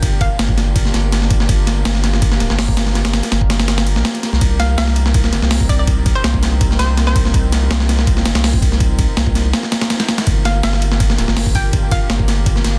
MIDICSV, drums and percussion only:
0, 0, Header, 1, 2, 480
1, 0, Start_track
1, 0, Key_signature, -2, "minor"
1, 0, Tempo, 365854
1, 31, Time_signature, 4, 2, 24, 8
1, 16778, End_track
2, 0, Start_track
2, 0, Title_t, "Drums"
2, 33, Note_on_c, 9, 36, 106
2, 34, Note_on_c, 9, 51, 91
2, 164, Note_off_c, 9, 36, 0
2, 165, Note_off_c, 9, 51, 0
2, 273, Note_on_c, 9, 36, 99
2, 274, Note_on_c, 9, 51, 72
2, 404, Note_off_c, 9, 36, 0
2, 405, Note_off_c, 9, 51, 0
2, 514, Note_on_c, 9, 38, 116
2, 514, Note_on_c, 9, 51, 92
2, 639, Note_on_c, 9, 36, 93
2, 645, Note_off_c, 9, 38, 0
2, 645, Note_off_c, 9, 51, 0
2, 755, Note_on_c, 9, 38, 56
2, 755, Note_on_c, 9, 51, 68
2, 770, Note_off_c, 9, 36, 0
2, 886, Note_off_c, 9, 38, 0
2, 886, Note_off_c, 9, 51, 0
2, 992, Note_on_c, 9, 36, 110
2, 994, Note_on_c, 9, 51, 88
2, 1120, Note_on_c, 9, 38, 37
2, 1123, Note_off_c, 9, 36, 0
2, 1125, Note_off_c, 9, 51, 0
2, 1234, Note_off_c, 9, 38, 0
2, 1234, Note_on_c, 9, 38, 42
2, 1234, Note_on_c, 9, 51, 62
2, 1365, Note_off_c, 9, 38, 0
2, 1365, Note_off_c, 9, 51, 0
2, 1475, Note_on_c, 9, 38, 52
2, 1475, Note_on_c, 9, 51, 66
2, 1600, Note_off_c, 9, 38, 0
2, 1600, Note_on_c, 9, 38, 45
2, 1606, Note_off_c, 9, 51, 0
2, 1712, Note_on_c, 9, 36, 103
2, 1712, Note_on_c, 9, 51, 83
2, 1731, Note_off_c, 9, 38, 0
2, 1840, Note_on_c, 9, 38, 50
2, 1843, Note_off_c, 9, 51, 0
2, 1844, Note_off_c, 9, 36, 0
2, 1953, Note_on_c, 9, 36, 109
2, 1955, Note_on_c, 9, 51, 88
2, 1972, Note_off_c, 9, 38, 0
2, 2084, Note_off_c, 9, 36, 0
2, 2086, Note_off_c, 9, 51, 0
2, 2193, Note_on_c, 9, 38, 47
2, 2193, Note_on_c, 9, 51, 72
2, 2324, Note_off_c, 9, 38, 0
2, 2324, Note_off_c, 9, 51, 0
2, 2431, Note_on_c, 9, 38, 112
2, 2431, Note_on_c, 9, 51, 92
2, 2558, Note_off_c, 9, 38, 0
2, 2558, Note_on_c, 9, 38, 53
2, 2562, Note_off_c, 9, 51, 0
2, 2672, Note_off_c, 9, 38, 0
2, 2672, Note_on_c, 9, 38, 55
2, 2672, Note_on_c, 9, 51, 69
2, 2801, Note_off_c, 9, 38, 0
2, 2801, Note_on_c, 9, 38, 50
2, 2803, Note_off_c, 9, 51, 0
2, 2912, Note_on_c, 9, 36, 107
2, 2912, Note_on_c, 9, 51, 88
2, 2932, Note_off_c, 9, 38, 0
2, 3039, Note_on_c, 9, 38, 54
2, 3043, Note_off_c, 9, 36, 0
2, 3043, Note_off_c, 9, 51, 0
2, 3153, Note_off_c, 9, 38, 0
2, 3153, Note_on_c, 9, 38, 44
2, 3153, Note_on_c, 9, 51, 65
2, 3281, Note_off_c, 9, 38, 0
2, 3281, Note_on_c, 9, 38, 55
2, 3284, Note_off_c, 9, 51, 0
2, 3393, Note_off_c, 9, 38, 0
2, 3393, Note_on_c, 9, 38, 124
2, 3393, Note_on_c, 9, 46, 84
2, 3520, Note_on_c, 9, 36, 98
2, 3524, Note_off_c, 9, 38, 0
2, 3524, Note_off_c, 9, 46, 0
2, 3635, Note_on_c, 9, 38, 106
2, 3635, Note_on_c, 9, 51, 84
2, 3652, Note_off_c, 9, 36, 0
2, 3762, Note_off_c, 9, 38, 0
2, 3762, Note_on_c, 9, 38, 51
2, 3766, Note_off_c, 9, 51, 0
2, 3874, Note_off_c, 9, 38, 0
2, 3874, Note_on_c, 9, 38, 51
2, 3874, Note_on_c, 9, 51, 62
2, 3999, Note_off_c, 9, 38, 0
2, 3999, Note_off_c, 9, 51, 0
2, 3999, Note_on_c, 9, 38, 115
2, 3999, Note_on_c, 9, 51, 87
2, 4113, Note_off_c, 9, 38, 0
2, 4113, Note_off_c, 9, 51, 0
2, 4113, Note_on_c, 9, 38, 114
2, 4113, Note_on_c, 9, 51, 82
2, 4241, Note_off_c, 9, 38, 0
2, 4241, Note_off_c, 9, 51, 0
2, 4241, Note_on_c, 9, 38, 51
2, 4241, Note_on_c, 9, 51, 68
2, 4354, Note_off_c, 9, 38, 0
2, 4354, Note_off_c, 9, 51, 0
2, 4354, Note_on_c, 9, 38, 101
2, 4354, Note_on_c, 9, 51, 82
2, 4479, Note_on_c, 9, 36, 99
2, 4485, Note_off_c, 9, 38, 0
2, 4485, Note_off_c, 9, 51, 0
2, 4591, Note_on_c, 9, 38, 106
2, 4591, Note_on_c, 9, 51, 82
2, 4610, Note_off_c, 9, 36, 0
2, 4717, Note_off_c, 9, 38, 0
2, 4717, Note_off_c, 9, 51, 0
2, 4717, Note_on_c, 9, 38, 107
2, 4717, Note_on_c, 9, 51, 82
2, 4828, Note_off_c, 9, 38, 0
2, 4828, Note_off_c, 9, 51, 0
2, 4828, Note_on_c, 9, 38, 112
2, 4828, Note_on_c, 9, 51, 82
2, 4957, Note_off_c, 9, 38, 0
2, 4957, Note_off_c, 9, 51, 0
2, 4957, Note_on_c, 9, 38, 109
2, 4957, Note_on_c, 9, 51, 77
2, 5071, Note_off_c, 9, 51, 0
2, 5071, Note_on_c, 9, 51, 65
2, 5088, Note_off_c, 9, 38, 0
2, 5197, Note_on_c, 9, 38, 54
2, 5202, Note_off_c, 9, 51, 0
2, 5312, Note_off_c, 9, 38, 0
2, 5312, Note_on_c, 9, 38, 121
2, 5312, Note_on_c, 9, 51, 94
2, 5441, Note_off_c, 9, 51, 0
2, 5441, Note_on_c, 9, 51, 43
2, 5443, Note_off_c, 9, 38, 0
2, 5552, Note_off_c, 9, 51, 0
2, 5552, Note_on_c, 9, 38, 41
2, 5552, Note_on_c, 9, 51, 68
2, 5680, Note_off_c, 9, 38, 0
2, 5680, Note_on_c, 9, 38, 42
2, 5683, Note_off_c, 9, 51, 0
2, 5790, Note_on_c, 9, 51, 87
2, 5791, Note_on_c, 9, 36, 106
2, 5811, Note_off_c, 9, 38, 0
2, 5921, Note_off_c, 9, 51, 0
2, 5923, Note_off_c, 9, 36, 0
2, 6030, Note_on_c, 9, 38, 47
2, 6030, Note_on_c, 9, 51, 73
2, 6162, Note_off_c, 9, 38, 0
2, 6162, Note_off_c, 9, 51, 0
2, 6270, Note_on_c, 9, 38, 120
2, 6270, Note_on_c, 9, 51, 91
2, 6396, Note_off_c, 9, 38, 0
2, 6396, Note_on_c, 9, 38, 53
2, 6402, Note_off_c, 9, 51, 0
2, 6507, Note_on_c, 9, 51, 71
2, 6527, Note_off_c, 9, 38, 0
2, 6635, Note_on_c, 9, 38, 50
2, 6639, Note_off_c, 9, 51, 0
2, 6748, Note_on_c, 9, 51, 89
2, 6749, Note_on_c, 9, 36, 116
2, 6767, Note_off_c, 9, 38, 0
2, 6874, Note_on_c, 9, 38, 54
2, 6879, Note_off_c, 9, 51, 0
2, 6881, Note_off_c, 9, 36, 0
2, 6988, Note_off_c, 9, 38, 0
2, 6988, Note_on_c, 9, 38, 45
2, 6988, Note_on_c, 9, 51, 70
2, 7116, Note_off_c, 9, 38, 0
2, 7116, Note_on_c, 9, 38, 56
2, 7119, Note_off_c, 9, 51, 0
2, 7226, Note_off_c, 9, 38, 0
2, 7226, Note_on_c, 9, 38, 124
2, 7226, Note_on_c, 9, 46, 87
2, 7357, Note_on_c, 9, 36, 93
2, 7358, Note_off_c, 9, 38, 0
2, 7358, Note_off_c, 9, 46, 0
2, 7470, Note_off_c, 9, 36, 0
2, 7470, Note_on_c, 9, 36, 97
2, 7470, Note_on_c, 9, 51, 72
2, 7601, Note_off_c, 9, 36, 0
2, 7601, Note_off_c, 9, 51, 0
2, 7707, Note_on_c, 9, 51, 89
2, 7709, Note_on_c, 9, 36, 110
2, 7838, Note_off_c, 9, 51, 0
2, 7840, Note_off_c, 9, 36, 0
2, 7949, Note_on_c, 9, 36, 102
2, 7949, Note_on_c, 9, 51, 71
2, 8080, Note_off_c, 9, 51, 0
2, 8081, Note_off_c, 9, 36, 0
2, 8189, Note_on_c, 9, 38, 120
2, 8189, Note_on_c, 9, 51, 93
2, 8318, Note_on_c, 9, 36, 90
2, 8320, Note_off_c, 9, 38, 0
2, 8320, Note_off_c, 9, 51, 0
2, 8432, Note_on_c, 9, 38, 59
2, 8432, Note_on_c, 9, 51, 66
2, 8449, Note_off_c, 9, 36, 0
2, 8563, Note_off_c, 9, 38, 0
2, 8563, Note_off_c, 9, 51, 0
2, 8671, Note_on_c, 9, 51, 91
2, 8672, Note_on_c, 9, 36, 112
2, 8802, Note_off_c, 9, 51, 0
2, 8802, Note_on_c, 9, 38, 38
2, 8803, Note_off_c, 9, 36, 0
2, 8913, Note_off_c, 9, 38, 0
2, 8913, Note_on_c, 9, 38, 41
2, 8913, Note_on_c, 9, 51, 61
2, 9044, Note_off_c, 9, 38, 0
2, 9044, Note_off_c, 9, 51, 0
2, 9151, Note_on_c, 9, 38, 50
2, 9151, Note_on_c, 9, 51, 64
2, 9275, Note_off_c, 9, 38, 0
2, 9275, Note_on_c, 9, 38, 46
2, 9282, Note_off_c, 9, 51, 0
2, 9390, Note_on_c, 9, 36, 101
2, 9390, Note_on_c, 9, 51, 80
2, 9406, Note_off_c, 9, 38, 0
2, 9517, Note_on_c, 9, 38, 47
2, 9521, Note_off_c, 9, 36, 0
2, 9521, Note_off_c, 9, 51, 0
2, 9630, Note_on_c, 9, 36, 109
2, 9632, Note_on_c, 9, 51, 90
2, 9648, Note_off_c, 9, 38, 0
2, 9762, Note_off_c, 9, 36, 0
2, 9763, Note_off_c, 9, 51, 0
2, 9872, Note_on_c, 9, 38, 47
2, 9872, Note_on_c, 9, 51, 68
2, 10003, Note_off_c, 9, 38, 0
2, 10003, Note_off_c, 9, 51, 0
2, 10111, Note_on_c, 9, 38, 118
2, 10111, Note_on_c, 9, 51, 95
2, 10239, Note_off_c, 9, 38, 0
2, 10239, Note_on_c, 9, 38, 57
2, 10242, Note_off_c, 9, 51, 0
2, 10353, Note_off_c, 9, 38, 0
2, 10353, Note_on_c, 9, 38, 54
2, 10353, Note_on_c, 9, 51, 70
2, 10480, Note_off_c, 9, 38, 0
2, 10480, Note_on_c, 9, 38, 52
2, 10484, Note_off_c, 9, 51, 0
2, 10590, Note_on_c, 9, 36, 116
2, 10591, Note_on_c, 9, 51, 91
2, 10611, Note_off_c, 9, 38, 0
2, 10717, Note_on_c, 9, 38, 52
2, 10721, Note_off_c, 9, 36, 0
2, 10722, Note_off_c, 9, 51, 0
2, 10831, Note_off_c, 9, 38, 0
2, 10831, Note_on_c, 9, 38, 101
2, 10831, Note_on_c, 9, 51, 82
2, 10958, Note_off_c, 9, 38, 0
2, 10958, Note_off_c, 9, 51, 0
2, 10958, Note_on_c, 9, 38, 110
2, 10958, Note_on_c, 9, 51, 83
2, 11073, Note_off_c, 9, 38, 0
2, 11073, Note_on_c, 9, 38, 125
2, 11073, Note_on_c, 9, 46, 81
2, 11089, Note_off_c, 9, 51, 0
2, 11198, Note_on_c, 9, 36, 94
2, 11205, Note_off_c, 9, 38, 0
2, 11205, Note_off_c, 9, 46, 0
2, 11312, Note_off_c, 9, 36, 0
2, 11312, Note_on_c, 9, 36, 98
2, 11315, Note_on_c, 9, 51, 73
2, 11442, Note_on_c, 9, 38, 37
2, 11443, Note_off_c, 9, 36, 0
2, 11446, Note_off_c, 9, 51, 0
2, 11551, Note_on_c, 9, 36, 111
2, 11551, Note_on_c, 9, 51, 89
2, 11573, Note_off_c, 9, 38, 0
2, 11682, Note_off_c, 9, 36, 0
2, 11682, Note_off_c, 9, 51, 0
2, 11790, Note_on_c, 9, 51, 74
2, 11791, Note_on_c, 9, 36, 101
2, 11921, Note_off_c, 9, 51, 0
2, 11922, Note_off_c, 9, 36, 0
2, 12031, Note_on_c, 9, 38, 120
2, 12031, Note_on_c, 9, 51, 89
2, 12157, Note_on_c, 9, 36, 96
2, 12162, Note_off_c, 9, 38, 0
2, 12162, Note_off_c, 9, 51, 0
2, 12271, Note_on_c, 9, 38, 55
2, 12271, Note_on_c, 9, 51, 70
2, 12288, Note_off_c, 9, 36, 0
2, 12402, Note_off_c, 9, 38, 0
2, 12402, Note_off_c, 9, 51, 0
2, 12509, Note_on_c, 9, 38, 103
2, 12509, Note_on_c, 9, 51, 80
2, 12638, Note_off_c, 9, 38, 0
2, 12638, Note_on_c, 9, 38, 49
2, 12640, Note_off_c, 9, 51, 0
2, 12752, Note_off_c, 9, 38, 0
2, 12752, Note_on_c, 9, 38, 104
2, 12752, Note_on_c, 9, 51, 83
2, 12877, Note_off_c, 9, 38, 0
2, 12877, Note_off_c, 9, 51, 0
2, 12877, Note_on_c, 9, 38, 106
2, 12877, Note_on_c, 9, 51, 83
2, 12990, Note_off_c, 9, 38, 0
2, 12990, Note_off_c, 9, 51, 0
2, 12990, Note_on_c, 9, 38, 102
2, 12990, Note_on_c, 9, 51, 82
2, 13118, Note_off_c, 9, 38, 0
2, 13118, Note_off_c, 9, 51, 0
2, 13118, Note_on_c, 9, 38, 106
2, 13118, Note_on_c, 9, 51, 78
2, 13231, Note_off_c, 9, 38, 0
2, 13231, Note_off_c, 9, 51, 0
2, 13231, Note_on_c, 9, 38, 107
2, 13231, Note_on_c, 9, 51, 83
2, 13358, Note_off_c, 9, 38, 0
2, 13358, Note_off_c, 9, 51, 0
2, 13358, Note_on_c, 9, 38, 104
2, 13358, Note_on_c, 9, 51, 81
2, 13470, Note_off_c, 9, 51, 0
2, 13470, Note_on_c, 9, 51, 88
2, 13473, Note_on_c, 9, 36, 114
2, 13490, Note_off_c, 9, 38, 0
2, 13602, Note_off_c, 9, 51, 0
2, 13604, Note_off_c, 9, 36, 0
2, 13713, Note_on_c, 9, 38, 49
2, 13713, Note_on_c, 9, 51, 71
2, 13844, Note_off_c, 9, 38, 0
2, 13844, Note_off_c, 9, 51, 0
2, 13951, Note_on_c, 9, 38, 123
2, 13951, Note_on_c, 9, 51, 92
2, 14080, Note_off_c, 9, 38, 0
2, 14080, Note_on_c, 9, 38, 52
2, 14083, Note_off_c, 9, 51, 0
2, 14195, Note_on_c, 9, 51, 68
2, 14212, Note_off_c, 9, 38, 0
2, 14322, Note_on_c, 9, 38, 53
2, 14326, Note_off_c, 9, 51, 0
2, 14434, Note_on_c, 9, 36, 116
2, 14434, Note_on_c, 9, 51, 90
2, 14453, Note_off_c, 9, 38, 0
2, 14561, Note_on_c, 9, 38, 56
2, 14565, Note_off_c, 9, 36, 0
2, 14566, Note_off_c, 9, 51, 0
2, 14674, Note_off_c, 9, 38, 0
2, 14674, Note_on_c, 9, 38, 44
2, 14674, Note_on_c, 9, 51, 66
2, 14800, Note_off_c, 9, 38, 0
2, 14800, Note_on_c, 9, 38, 54
2, 14805, Note_off_c, 9, 51, 0
2, 14912, Note_off_c, 9, 38, 0
2, 14912, Note_on_c, 9, 38, 118
2, 14912, Note_on_c, 9, 46, 83
2, 15040, Note_on_c, 9, 36, 96
2, 15044, Note_off_c, 9, 38, 0
2, 15044, Note_off_c, 9, 46, 0
2, 15151, Note_on_c, 9, 51, 72
2, 15153, Note_off_c, 9, 36, 0
2, 15153, Note_on_c, 9, 36, 94
2, 15283, Note_off_c, 9, 51, 0
2, 15284, Note_off_c, 9, 36, 0
2, 15391, Note_on_c, 9, 51, 91
2, 15392, Note_on_c, 9, 36, 110
2, 15522, Note_off_c, 9, 51, 0
2, 15523, Note_off_c, 9, 36, 0
2, 15632, Note_on_c, 9, 36, 96
2, 15632, Note_on_c, 9, 51, 70
2, 15763, Note_off_c, 9, 51, 0
2, 15764, Note_off_c, 9, 36, 0
2, 15872, Note_on_c, 9, 38, 117
2, 15872, Note_on_c, 9, 51, 88
2, 15999, Note_on_c, 9, 36, 92
2, 16003, Note_off_c, 9, 38, 0
2, 16003, Note_off_c, 9, 51, 0
2, 16112, Note_on_c, 9, 38, 57
2, 16112, Note_on_c, 9, 51, 70
2, 16130, Note_off_c, 9, 36, 0
2, 16243, Note_off_c, 9, 38, 0
2, 16243, Note_off_c, 9, 51, 0
2, 16351, Note_on_c, 9, 36, 113
2, 16351, Note_on_c, 9, 51, 88
2, 16477, Note_on_c, 9, 38, 38
2, 16482, Note_off_c, 9, 36, 0
2, 16482, Note_off_c, 9, 51, 0
2, 16589, Note_off_c, 9, 38, 0
2, 16589, Note_on_c, 9, 38, 41
2, 16589, Note_on_c, 9, 51, 62
2, 16721, Note_off_c, 9, 38, 0
2, 16721, Note_off_c, 9, 51, 0
2, 16778, End_track
0, 0, End_of_file